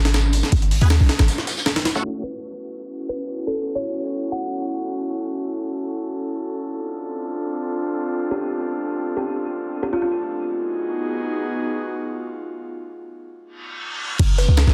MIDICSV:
0, 0, Header, 1, 7, 480
1, 0, Start_track
1, 0, Tempo, 379747
1, 662, Time_signature, 4, 2, 24, 8
1, 18629, End_track
2, 0, Start_track
2, 0, Title_t, "Kalimba"
2, 0, Program_c, 0, 108
2, 2825, Note_on_c, 0, 71, 78
2, 3114, Note_off_c, 0, 71, 0
2, 3907, Note_on_c, 0, 71, 82
2, 4193, Note_off_c, 0, 71, 0
2, 4389, Note_on_c, 0, 69, 80
2, 4674, Note_off_c, 0, 69, 0
2, 4744, Note_on_c, 0, 73, 81
2, 5109, Note_off_c, 0, 73, 0
2, 5461, Note_on_c, 0, 78, 82
2, 6136, Note_off_c, 0, 78, 0
2, 10506, Note_on_c, 0, 67, 81
2, 10795, Note_off_c, 0, 67, 0
2, 11589, Note_on_c, 0, 67, 80
2, 11874, Note_off_c, 0, 67, 0
2, 12424, Note_on_c, 0, 67, 85
2, 12524, Note_off_c, 0, 67, 0
2, 12549, Note_on_c, 0, 65, 84
2, 12622, Note_off_c, 0, 65, 0
2, 12664, Note_on_c, 0, 65, 69
2, 12744, Note_off_c, 0, 65, 0
2, 18180, Note_on_c, 0, 71, 90
2, 18472, Note_off_c, 0, 71, 0
2, 18629, End_track
3, 0, Start_track
3, 0, Title_t, "Analog synth pad"
3, 0, Program_c, 1, 89
3, 2583, Note_on_c, 1, 69, 85
3, 2584, Note_on_c, 1, 61, 76
3, 2585, Note_on_c, 1, 64, 71
3, 2585, Note_on_c, 1, 66, 70
3, 8292, Note_off_c, 1, 61, 0
3, 8293, Note_off_c, 1, 64, 0
3, 8293, Note_off_c, 1, 66, 0
3, 8343, Note_on_c, 1, 62, 74
3, 8344, Note_on_c, 1, 65, 75
3, 8345, Note_on_c, 1, 60, 80
3, 13092, Note_off_c, 1, 69, 0
3, 13094, Note_off_c, 1, 62, 0
3, 13095, Note_off_c, 1, 60, 0
3, 13095, Note_off_c, 1, 65, 0
3, 13143, Note_on_c, 1, 59, 79
3, 13143, Note_on_c, 1, 63, 73
3, 13144, Note_on_c, 1, 66, 70
3, 13144, Note_on_c, 1, 68, 88
3, 15044, Note_off_c, 1, 66, 0
3, 15061, Note_on_c, 1, 65, 68
3, 15994, Note_off_c, 1, 59, 0
3, 15994, Note_off_c, 1, 63, 0
3, 15994, Note_off_c, 1, 68, 0
3, 16012, Note_off_c, 1, 65, 0
3, 17946, Note_on_c, 1, 66, 93
3, 17947, Note_on_c, 1, 57, 86
3, 17948, Note_on_c, 1, 61, 77
3, 17948, Note_on_c, 1, 64, 77
3, 18629, Note_off_c, 1, 57, 0
3, 18629, Note_off_c, 1, 61, 0
3, 18629, Note_off_c, 1, 64, 0
3, 18629, Note_off_c, 1, 66, 0
3, 18629, End_track
4, 0, Start_track
4, 0, Title_t, "Tonewheel organ"
4, 0, Program_c, 2, 16
4, 1029, Note_on_c, 2, 66, 78
4, 1029, Note_on_c, 2, 68, 93
4, 1030, Note_on_c, 2, 63, 76
4, 1031, Note_on_c, 2, 59, 86
4, 1121, Note_off_c, 2, 66, 0
4, 1121, Note_off_c, 2, 68, 0
4, 1122, Note_off_c, 2, 59, 0
4, 1122, Note_off_c, 2, 63, 0
4, 2470, Note_on_c, 2, 66, 109
4, 2471, Note_on_c, 2, 57, 96
4, 2471, Note_on_c, 2, 61, 90
4, 2471, Note_on_c, 2, 64, 89
4, 2823, Note_off_c, 2, 57, 0
4, 2823, Note_off_c, 2, 61, 0
4, 2823, Note_off_c, 2, 64, 0
4, 2823, Note_off_c, 2, 66, 0
4, 18629, End_track
5, 0, Start_track
5, 0, Title_t, "808-style bass"
5, 0, Program_c, 3, 38
5, 0, Note_on_c, 3, 32, 91
5, 527, Note_off_c, 3, 32, 0
5, 660, Note_on_c, 3, 32, 98
5, 1007, Note_off_c, 3, 32, 0
5, 1029, Note_on_c, 3, 39, 95
5, 1244, Note_off_c, 3, 39, 0
5, 1269, Note_on_c, 3, 35, 94
5, 1371, Note_off_c, 3, 35, 0
5, 1511, Note_on_c, 3, 32, 92
5, 1623, Note_off_c, 3, 32, 0
5, 17941, Note_on_c, 3, 30, 99
5, 18288, Note_off_c, 3, 30, 0
5, 18307, Note_on_c, 3, 37, 98
5, 18523, Note_off_c, 3, 37, 0
5, 18546, Note_on_c, 3, 33, 89
5, 18629, Note_off_c, 3, 33, 0
5, 18629, End_track
6, 0, Start_track
6, 0, Title_t, "Reverse cymbal"
6, 0, Program_c, 4, 119
6, 16980, Note_on_c, 4, 60, 73
6, 17941, Note_off_c, 4, 60, 0
6, 18629, End_track
7, 0, Start_track
7, 0, Title_t, "Drums"
7, 64, Note_on_c, 9, 38, 103
7, 64, Note_on_c, 9, 46, 78
7, 78, Note_on_c, 9, 42, 41
7, 179, Note_off_c, 9, 38, 0
7, 179, Note_off_c, 9, 46, 0
7, 179, Note_on_c, 9, 38, 101
7, 179, Note_on_c, 9, 46, 76
7, 182, Note_off_c, 9, 38, 0
7, 182, Note_on_c, 9, 38, 101
7, 182, Note_on_c, 9, 54, 80
7, 204, Note_off_c, 9, 42, 0
7, 306, Note_off_c, 9, 46, 0
7, 308, Note_off_c, 9, 54, 0
7, 309, Note_off_c, 9, 38, 0
7, 412, Note_on_c, 9, 54, 70
7, 419, Note_on_c, 9, 46, 68
7, 539, Note_off_c, 9, 54, 0
7, 544, Note_on_c, 9, 42, 38
7, 545, Note_off_c, 9, 46, 0
7, 547, Note_on_c, 9, 38, 39
7, 658, Note_on_c, 9, 46, 84
7, 661, Note_on_c, 9, 36, 106
7, 662, Note_on_c, 9, 54, 96
7, 671, Note_off_c, 9, 42, 0
7, 673, Note_off_c, 9, 38, 0
7, 785, Note_off_c, 9, 46, 0
7, 786, Note_on_c, 9, 42, 44
7, 787, Note_off_c, 9, 36, 0
7, 788, Note_off_c, 9, 54, 0
7, 901, Note_on_c, 9, 46, 68
7, 904, Note_off_c, 9, 46, 0
7, 904, Note_on_c, 9, 46, 80
7, 912, Note_off_c, 9, 42, 0
7, 1027, Note_on_c, 9, 42, 41
7, 1030, Note_off_c, 9, 46, 0
7, 1140, Note_on_c, 9, 38, 116
7, 1140, Note_on_c, 9, 46, 90
7, 1146, Note_on_c, 9, 54, 84
7, 1150, Note_off_c, 9, 38, 0
7, 1150, Note_on_c, 9, 38, 116
7, 1154, Note_off_c, 9, 42, 0
7, 1267, Note_off_c, 9, 46, 0
7, 1272, Note_off_c, 9, 54, 0
7, 1277, Note_off_c, 9, 38, 0
7, 1380, Note_on_c, 9, 38, 101
7, 1380, Note_on_c, 9, 46, 76
7, 1387, Note_on_c, 9, 54, 69
7, 1506, Note_off_c, 9, 38, 0
7, 1506, Note_off_c, 9, 46, 0
7, 1507, Note_on_c, 9, 38, 60
7, 1507, Note_on_c, 9, 46, 80
7, 1513, Note_off_c, 9, 54, 0
7, 1620, Note_off_c, 9, 46, 0
7, 1620, Note_on_c, 9, 46, 73
7, 1622, Note_off_c, 9, 38, 0
7, 1622, Note_on_c, 9, 38, 36
7, 1622, Note_on_c, 9, 54, 62
7, 1746, Note_off_c, 9, 46, 0
7, 1747, Note_off_c, 9, 38, 0
7, 1747, Note_on_c, 9, 38, 48
7, 1748, Note_off_c, 9, 54, 0
7, 1861, Note_on_c, 9, 46, 60
7, 1864, Note_off_c, 9, 38, 0
7, 1864, Note_on_c, 9, 38, 110
7, 1868, Note_on_c, 9, 54, 79
7, 1986, Note_off_c, 9, 54, 0
7, 1986, Note_on_c, 9, 54, 84
7, 1987, Note_off_c, 9, 46, 0
7, 1990, Note_off_c, 9, 38, 0
7, 1995, Note_on_c, 9, 38, 97
7, 2098, Note_off_c, 9, 38, 0
7, 2098, Note_on_c, 9, 38, 98
7, 2098, Note_on_c, 9, 46, 74
7, 2104, Note_off_c, 9, 38, 0
7, 2104, Note_on_c, 9, 38, 109
7, 2113, Note_off_c, 9, 54, 0
7, 2225, Note_off_c, 9, 46, 0
7, 2227, Note_off_c, 9, 38, 0
7, 2227, Note_on_c, 9, 38, 100
7, 2227, Note_on_c, 9, 46, 77
7, 2342, Note_on_c, 9, 54, 60
7, 2343, Note_off_c, 9, 38, 0
7, 2343, Note_off_c, 9, 46, 0
7, 2343, Note_on_c, 9, 38, 99
7, 2343, Note_on_c, 9, 46, 81
7, 2461, Note_off_c, 9, 54, 0
7, 2461, Note_on_c, 9, 54, 81
7, 2466, Note_off_c, 9, 38, 0
7, 2466, Note_on_c, 9, 38, 95
7, 2469, Note_off_c, 9, 46, 0
7, 2587, Note_off_c, 9, 54, 0
7, 2592, Note_off_c, 9, 38, 0
7, 17941, Note_on_c, 9, 46, 88
7, 17941, Note_on_c, 9, 49, 91
7, 17942, Note_on_c, 9, 36, 107
7, 17944, Note_on_c, 9, 54, 79
7, 18067, Note_off_c, 9, 46, 0
7, 18067, Note_off_c, 9, 49, 0
7, 18069, Note_off_c, 9, 36, 0
7, 18070, Note_off_c, 9, 54, 0
7, 18176, Note_on_c, 9, 38, 45
7, 18182, Note_on_c, 9, 46, 69
7, 18190, Note_on_c, 9, 54, 65
7, 18302, Note_off_c, 9, 38, 0
7, 18308, Note_off_c, 9, 46, 0
7, 18316, Note_off_c, 9, 54, 0
7, 18416, Note_on_c, 9, 54, 90
7, 18422, Note_on_c, 9, 38, 118
7, 18422, Note_on_c, 9, 46, 88
7, 18423, Note_off_c, 9, 38, 0
7, 18423, Note_on_c, 9, 38, 109
7, 18543, Note_off_c, 9, 54, 0
7, 18548, Note_off_c, 9, 46, 0
7, 18550, Note_off_c, 9, 38, 0
7, 18550, Note_on_c, 9, 38, 54
7, 18629, Note_off_c, 9, 38, 0
7, 18629, End_track
0, 0, End_of_file